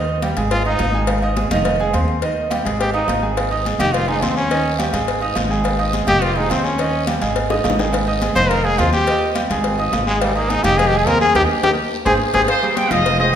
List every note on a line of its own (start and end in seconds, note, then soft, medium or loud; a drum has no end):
0.00 0.31 D#2 loud
0.00 0.18 D#3 medium
0.00 0.18 D#4 medium
0.00 0.18 D#5 medium
0.08 high conga soft
0.22 0.34 G3 medium
0.22 0.35 G4 medium
0.22 0.35 G5 medium
0.22 cowbell medium
0.22 high conga loud
0.22 low agogo loud
0.37 0.77 G#1 medium
0.37 0.60 G#3 medium
0.37 0.60 G#4 medium
0.37 0.61 G#5 medium
0.37 cowbell medium
0.37 low agogo loud
0.51 0.64 F4 loud
0.51 cowbell loud
0.51 high conga soft
0.65 0.89 D#4 medium
0.65 1.06 D#4 medium
0.65 0.89 D#5 medium
0.65 0.89 D#6 medium
0.65 high conga soft
0.65 low agogo medium
0.79 1.46 G#1 loud
0.79 cowbell medium
0.79 high conga medium
0.79 low timbale medium
0.79 low agogo loud
0.94 1.17 G#3 medium
0.94 1.18 G#4 medium
0.94 1.18 G#5 medium
0.94 high conga soft
1.07 cowbell loud
1.07 high conga soft
1.07 low agogo loud
1.22 1.35 D#4 medium
1.22 1.35 D#5 medium
1.22 1.35 D#6 medium
1.22 high conga soft
1.22 low agogo medium
1.37 1.49 G#3 medium
1.37 1.49 G#4 medium
1.37 1.49 G#5 medium
1.37 cowbell medium
1.37 high conga loud
1.51 1.91 F1 loud
1.51 1.75 D#3 medium
1.51 1.75 D#4 medium
1.51 1.75 D#5 medium
1.51 cowbell medium
1.51 high conga medium
1.51 low conga medium
1.51 low agogo loud
1.65 cowbell loud
1.65 high conga soft
1.65 low agogo medium
1.80 1.91 G#3 medium
1.80 1.92 G#4 medium
1.80 1.92 G#5 medium
1.80 high conga soft
1.80 low agogo medium
1.93 2.60 D#2 loud
1.93 2.17 C4 medium
1.93 2.17 C5 medium
1.93 2.18 C6 medium
1.93 cowbell medium
1.93 high conga medium
1.93 low agogo loud
2.08 high conga medium
2.22 2.46 D#3 medium
2.22 2.46 D#4 medium
2.22 2.46 D#5 medium
2.22 cowbell loud
2.22 high conga soft
2.22 low agogo medium
2.36 high conga soft
2.51 2.63 G3 medium
2.51 2.63 G4 medium
2.51 2.63 G5 medium
2.51 cowbell medium
2.51 high conga loud
2.51 low agogo loud
2.65 3.05 G#1 medium
2.65 2.89 G#3 medium
2.65 2.89 G#4 medium
2.65 2.89 G#5 medium
2.65 cowbell medium
2.65 low agogo medium
2.80 2.93 G4 medium
2.80 cowbell loud
2.80 high conga soft
2.94 3.17 D#4 medium
2.94 3.34 D#4 medium
2.94 3.17 D#5 medium
2.94 3.17 D#6 medium
2.94 high conga soft
2.94 low agogo medium
3.08 3.74 G#1 medium
3.08 cowbell medium
3.08 high conga loud
3.08 low timbale medium
3.08 low agogo loud
3.22 3.46 G#3 medium
3.22 3.46 G#4 medium
3.22 3.46 G#5 medium
3.22 high conga soft
3.37 cowbell loud
3.37 high conga soft
3.37 low agogo loud
3.37 long guiro medium
3.51 3.63 D#4 medium
3.51 3.63 D#5 medium
3.51 3.63 D#6 medium
3.51 high conga soft
3.51 low agogo medium
3.65 3.77 G#3 medium
3.65 3.77 G#4 medium
3.65 3.77 G#5 medium
3.65 cowbell medium
3.65 high conga loud
3.65 short guiro medium
3.79 4.19 F1 medium
3.79 4.03 D#3 medium
3.79 4.03 D#4 loud
3.79 3.95 G4 loud
3.79 4.03 D#5 medium
3.79 cowbell medium
3.79 high conga loud
3.79 low conga medium
3.79 low agogo loud
3.79 short guiro medium
3.94 4.10 F4 medium
3.94 cowbell loud
3.94 high conga soft
3.94 low agogo medium
3.94 long guiro medium
4.08 4.20 G#3 medium
4.08 4.25 D#4 loud
4.08 4.20 G#4 medium
4.08 4.20 G#5 medium
4.08 high conga soft
4.08 low agogo loud
4.22 4.88 D#2 loud
4.22 4.45 C4 medium
4.22 4.36 C4 medium
4.22 4.46 C5 medium
4.22 4.46 C6 medium
4.22 cowbell medium
4.22 high conga medium
4.22 low agogo loud
4.22 short guiro medium
4.37 4.77 C#4 medium
4.37 high conga medium
4.37 short guiro medium
4.51 4.74 D#3 medium
4.51 4.74 D#4 medium
4.51 4.74 D#5 medium
4.51 cowbell loud
4.51 high conga soft
4.51 low agogo medium
4.51 long guiro medium
4.66 high conga soft
4.79 4.91 G3 medium
4.79 4.91 G4 medium
4.79 4.92 G5 medium
4.79 cowbell medium
4.79 high conga loud
4.79 low agogo loud
4.79 short guiro medium
4.93 5.33 G#1 loud
4.93 5.17 G#3 medium
4.93 5.17 G#4 medium
4.93 5.17 G#5 medium
4.93 cowbell medium
4.93 low agogo medium
4.93 short guiro medium
5.08 cowbell loud
5.08 high conga soft
5.08 long guiro medium
5.21 5.45 D#4 medium
5.21 5.45 D#5 medium
5.21 5.46 D#6 medium
5.21 high conga soft
5.21 low agogo medium
5.35 6.02 G#1 loud
5.35 cowbell medium
5.35 high conga medium
5.35 low timbale medium
5.35 low agogo loud
5.35 short guiro medium
5.50 5.74 G#3 medium
5.50 5.74 G#4 medium
5.50 5.74 G#5 medium
5.50 high conga soft
5.50 short guiro medium
5.64 cowbell loud
5.64 high conga soft
5.64 low agogo loud
5.64 long guiro medium
5.79 5.91 D#4 medium
5.79 5.91 D#5 medium
5.79 5.91 D#6 medium
5.79 high conga soft
5.79 low agogo medium
5.93 6.05 G#3 medium
5.93 6.05 G#4 medium
5.93 6.06 G#5 medium
5.93 cowbell medium
5.93 high conga medium
5.93 short guiro medium
6.07 6.48 F1 loud
6.07 6.31 D#3 loud
6.07 6.31 D#4 medium
6.07 6.24 G4 loud
6.07 6.32 D#5 loud
6.07 cowbell medium
6.07 high conga loud
6.07 low conga medium
6.07 low agogo loud
6.07 short guiro medium
6.21 6.38 F4 loud
6.21 cowbell loud
6.21 high conga soft
6.21 low agogo medium
6.21 long guiro medium
6.35 6.48 G#3 medium
6.35 6.52 D#4 medium
6.35 6.48 G#4 medium
6.35 6.49 G#5 medium
6.35 high conga soft
6.35 low agogo medium
6.50 7.17 D#2 loud
6.50 6.66 C4 medium
6.50 6.74 C4 medium
6.50 6.74 C5 medium
6.50 6.74 C6 medium
6.50 cowbell medium
6.50 high conga medium
6.50 low timbale medium
6.50 low agogo loud
6.50 short guiro medium
6.64 7.07 C#4 medium
6.64 high conga medium
6.64 short guiro medium
6.78 7.03 D#3 medium
6.78 7.03 D#4 medium
6.78 7.03 D#5 medium
6.78 cowbell loud
6.78 high conga soft
6.78 low agogo medium
6.78 long guiro medium
6.93 high conga soft
7.07 7.19 G3 medium
7.07 7.20 G4 medium
7.07 7.20 G5 medium
7.07 cowbell medium
7.07 high conga loud
7.07 low agogo loud
7.07 short guiro medium
7.21 7.62 G#1 loud
7.21 7.45 G#3 medium
7.21 7.45 G#4 medium
7.21 7.45 G#5 medium
7.21 cowbell medium
7.21 low agogo medium
7.21 short guiro medium
7.36 cowbell loud
7.36 high conga soft
7.36 long guiro medium
7.50 7.74 D#4 medium
7.50 7.74 D#5 medium
7.50 7.74 D#6 medium
7.50 high bongo loud
7.50 high conga soft
7.50 low agogo medium
7.64 8.30 G#1 loud
7.64 cowbell medium
7.64 high conga loud
7.64 low timbale medium
7.64 low agogo loud
7.64 short guiro medium
7.70 low bongo loud
7.79 8.02 G#3 medium
7.79 8.03 G#4 medium
7.79 8.03 G#5 medium
7.79 low bongo medium
7.79 short guiro medium
7.93 cowbell loud
7.93 high conga soft
7.93 low agogo loud
7.93 long guiro medium
8.07 8.19 D#4 medium
8.07 8.19 D#5 medium
8.07 8.20 D#6 medium
8.07 low agogo medium
8.22 8.33 G#3 medium
8.22 8.34 G#4 medium
8.22 8.34 G#5 medium
8.22 cowbell medium
8.22 high conga loud
8.22 short guiro medium
8.35 8.76 F1 loud
8.35 8.59 D#3 medium
8.35 8.60 D#4 loud
8.35 8.51 C5 loud
8.35 8.60 D#5 medium
8.35 cowbell medium
8.35 high conga loud
8.35 low conga medium
8.35 low agogo loud
8.35 short guiro medium
8.50 8.66 A#4 loud
8.50 cowbell loud
8.50 high conga soft
8.50 low agogo medium
8.50 long guiro medium
8.64 8.76 G#3 medium
8.64 8.80 G#4 medium
8.64 8.76 G#4 medium
8.64 8.77 G#5 medium
8.64 high conga soft
8.64 low agogo medium
8.78 9.45 D#2 loud
8.78 9.02 C4 medium
8.78 8.93 F4 medium
8.78 9.02 C5 medium
8.78 9.03 C6 medium
8.78 cowbell medium
8.78 high conga loud
8.78 low timbale medium
8.78 low agogo loud
8.78 short guiro medium
8.93 9.33 G4 loud
8.93 high conga medium
8.93 short guiro medium
9.07 9.31 D#3 medium
9.07 9.31 D#4 medium
9.07 9.31 D#5 medium
9.07 cowbell loud
9.07 high conga soft
9.07 low agogo medium
9.07 long guiro medium
9.22 high conga soft
9.35 9.48 G3 medium
9.35 9.48 G4 medium
9.35 9.48 G5 medium
9.35 cowbell medium
9.35 high conga loud
9.35 low agogo loud
9.35 short guiro medium
9.50 9.90 G#1 loud
9.50 9.74 G#3 medium
9.50 9.74 G#4 medium
9.50 9.74 G#5 medium
9.50 cowbell medium
9.50 low agogo medium
9.50 short guiro medium
9.64 cowbell loud
9.64 high conga soft
9.64 long guiro medium
9.79 10.02 D#4 medium
9.79 10.02 D#5 medium
9.79 10.02 D#6 medium
9.79 high conga soft
9.79 low agogo medium
9.93 10.58 G#1 loud
9.93 cowbell medium
9.93 high conga loud
9.93 low timbale medium
9.93 low agogo loud
9.93 short guiro medium
10.07 10.23 G#3 medium
10.07 10.31 G#3 medium
10.07 10.31 G#4 medium
10.07 10.31 G#5 medium
10.07 high conga soft
10.07 short guiro medium
10.21 10.37 G3 medium
10.21 cowbell loud
10.21 high conga soft
10.21 low agogo loud
10.21 long guiro medium
10.35 10.51 A#3 medium
10.35 10.47 D#4 medium
10.35 10.47 D#5 medium
10.35 10.48 D#6 medium
10.35 high conga soft
10.35 low agogo medium
10.50 10.61 G#3 medium
10.50 10.65 D#4 loud
10.50 10.62 G#4 medium
10.50 10.62 G#5 medium
10.50 cowbell medium
10.50 high conga loud
10.50 short guiro medium
10.64 11.04 F1 loud
10.64 10.88 D#3 loud
10.64 10.88 D#4 medium
10.64 10.79 G4 loud
10.64 10.88 D#5 loud
10.64 cowbell medium
10.64 high conga medium
10.64 low conga medium
10.64 low agogo loud
10.64 short guiro medium
10.77 10.89 G#4 loud
10.77 cowbell loud
10.77 high conga soft
10.77 low conga medium
10.77 low agogo medium
10.77 long guiro medium
10.88 10.99 G4 loud
10.92 11.04 G#3 medium
10.92 11.04 G#4 medium
10.92 11.05 G#5 medium
10.92 high conga soft
10.92 low agogo medium
10.97 11.08 G#4 medium
11.07 11.33 D#2 loud
11.07 11.30 C4 medium
11.07 11.21 A#4 loud
11.07 11.30 C5 medium
11.07 11.30 C6 medium
11.07 cowbell medium
11.07 high conga medium
11.07 low timbale medium
11.07 low agogo loud
11.07 short guiro medium
11.21 11.34 G#4 loud
11.21 high conga medium
11.21 short guiro medium
11.35 11.45 D#2 loud
11.35 11.44 D#4 loud
11.35 11.44 G4 loud
11.35 11.42 G4 loud
11.35 11.44 A#4 medium
11.35 cowbell loud
11.35 high conga loud
11.35 high timbale loud
11.35 long guiro loud
11.63 11.74 D#2 loud
11.63 11.72 D#4 loud
11.63 11.72 G4 loud
11.63 11.70 G4 loud
11.63 11.73 A#4 medium
11.63 cowbell loud
11.63 high conga loud
11.63 high timbale loud
11.63 long guiro medium
12.05 12.16 G#1 loud
12.05 12.15 G4 loud
12.05 12.15 G#4 loud
12.05 12.13 G#4 medium
12.05 12.15 C5 loud
12.05 cowbell loud
12.05 high conga loud
12.05 high timbale loud
12.05 long guiro loud
12.34 12.45 G#1 loud
12.34 12.43 G4 loud
12.34 12.43 G#4 loud
12.34 12.41 G#4 loud
12.34 12.43 C5 medium
12.34 cowbell loud
12.34 high conga loud
12.34 high timbale medium
12.34 long guiro loud
12.48 12.75 D#4 medium
12.48 12.75 C5 loud
12.48 cowbell loud
12.48 high conga soft
12.48 low agogo loud
12.48 long guiro medium
12.63 12.86 G3 medium
12.63 12.86 G4 medium
12.63 12.86 G#4 medium
12.63 high conga soft
12.63 low agogo medium
12.76 12.91 C5 medium
12.76 12.91 G5 loud
12.76 cowbell medium
12.76 high conga loud
12.76 short guiro medium
12.90 13.31 F1 loud
12.90 13.14 F3 loud
12.90 13.15 F4 medium
12.90 13.19 G#4 medium
12.90 13.18 D#5 loud
12.90 13.15 F5 medium
12.90 cowbell medium
12.90 high conga medium
12.90 low conga loud
12.90 low agogo loud
12.90 short guiro medium
13.05 cowbell loud
13.05 high conga soft
13.05 low agogo medium
13.05 long guiro medium
13.19 13.31 G#3 medium
13.19 13.35 G4 medium
13.19 13.31 G#4 medium
13.19 13.31 C5 medium
13.19 13.35 D#5 loud
13.19 high conga soft
13.19 low agogo medium